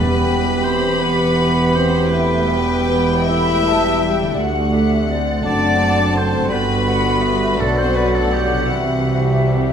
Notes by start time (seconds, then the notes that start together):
Already playing: E1 E2 E3 G3 B3 E4 G4 B4 G5 B5
0.63 C4 C5
1.01 B3 B4 F#5
1.74 C4 C5
2.10 A3 B3 E4 B4 E5 G5
2.50 G3 G5
2.89 B3 B5
3.29 A3 E4 E5 B5
3.67 G3 A5
4.03 G3 G5
4.21 D3
4.25 A3
4.30 F#4
4.34 D5
4.38 D2 D3 A3 F#4 F#5
4.73 D4 E5
5.09 C4 D5
5.46 F#1 F#2 A3 D4 F#4 D5 F#5 A5
6.16 C4 C5
6.35 G2
6.39 B3
6.44 F#4
6.48 G1 G3 B3 B4 D5 G5
6.53 G2 B3 B5
6.87 F#5
7.22 E5
7.59 B1 B2 F#3 A3 D4 A4 D5 F#5
7.77 C4 C5
7.95 B3 B4
8.14 A3 A4
8.33 G3 G4
8.53 C3
8.57 C4
8.62 E4
8.66 C2 E3 E5
8.70 C3 G3 G4 E5